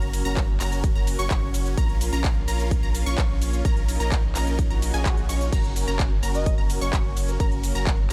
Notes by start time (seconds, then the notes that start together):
Already playing: F#1 F#3 A#3 C#4 F#4 A#4 A#5
0.02 closed hi-hat
0.13 open hi-hat, ride, cabasa
0.25 F#1 C#4 F#4 A#4 A#5, closed hi-hat, cabasa
0.37 kick, clap, closed hi-hat, cabasa
0.60 F#1 C#4 F#4 A#4 A#5, clap, open hi-hat, ride, cabasa
0.72 closed hi-hat, cabasa
0.84 kick, closed hi-hat, cabasa
0.95 F#1 C#4 F#4 A#4 A#5
1.07 open hi-hat, ride, cabasa
1.19 F#1 C#4 F#4 C#5 C#6, closed hi-hat, cabasa
1.31 F#1 C#4 F#4 C#5 C#6, kick, clap, closed hi-hat, cabasa
1.54 open hi-hat, ride, cabasa
1.66 closed hi-hat, cabasa
1.77 A#1 A#3 C#4 F4 A#4 A#5, kick, closed hi-hat, cabasa
1.89 closed hi-hat
2.01 open hi-hat, ride, cabasa
2.13 A#1 C#4 F4 A#4 A#5, closed hi-hat, cabasa
2.24 kick, clap, closed hi-hat, cabasa
2.48 A#1 C#4 F4 A#4 A#5, open hi-hat, ride, cabasa
2.60 closed hi-hat, cabasa
2.71 kick, closed hi-hat, cabasa
2.83 A#1 C#4 F4 A#4 A#5
2.95 open hi-hat, ride, cabasa
3.06 A#1 C#4 F4 C#5 C#6, closed hi-hat, cabasa
3.18 A#1 C#6, kick, clap, closed hi-hat, cabasa
3.42 open hi-hat, ride, cabasa
3.53 closed hi-hat, cabasa
3.65 A#1 C#4 D#4 F4 A#4 A#5, kick, closed hi-hat, cabasa
3.77 closed hi-hat
3.88 open hi-hat, ride, cabasa
4.00 A#1 C#4 F4 A#4 A#5, closed hi-hat, cabasa
4.12 kick, clap, closed hi-hat, cabasa
4.35 A#1 C#4 F4 A#4 A#5, clap, open hi-hat, ride, cabasa
4.47 closed hi-hat, cabasa
4.59 kick, closed hi-hat, swell, cabasa
4.70 A#1 C#4 F4 A#4 A#5, closed hi-hat
4.82 open hi-hat, ride, cabasa
4.94 A#1 C#4 F4 G#4 G#5, closed hi-hat, cabasa
5.06 kick, clap, closed hi-hat, cabasa
5.17 closed hi-hat
5.29 A#1 C#4 F4 C#5 C#6, open hi-hat, ride, cabasa
5.41 closed hi-hat, cabasa
5.52 F#1 F#3 C#4 F#4 A#4 A#5, kick, closed hi-hat, crash, cabasa
5.64 closed hi-hat
5.76 open hi-hat, ride, cabasa
5.88 F#1 C#4 F#4 A#4 A#5, closed hi-hat, cabasa
5.99 kick, clap, closed hi-hat, cabasa
6.23 F#1 C#4 F#4 A#4 A#5, open hi-hat, ride, cabasa
6.35 D#5, closed hi-hat, cabasa
6.46 kick, closed hi-hat, cabasa
6.58 F#1 C#4 F#4 A#4 A#5
6.70 open hi-hat, ride, cabasa
6.81 F#1 C#4 F#4 C#5 C#6, closed hi-hat, cabasa
6.93 F#1 C#4 F#4 C#5 C#6, kick, clap, closed hi-hat, cabasa
7.17 open hi-hat, ride, cabasa
7.28 A#4, closed hi-hat, cabasa
7.40 F#1 C#4 F#4 A#4 A#5, kick, closed hi-hat, cabasa
7.52 closed hi-hat
7.63 open hi-hat, ride, cabasa
7.75 F#1 C#4 F#4 A#4 A#5, closed hi-hat, cabasa
7.87 kick, clap, closed hi-hat, cabasa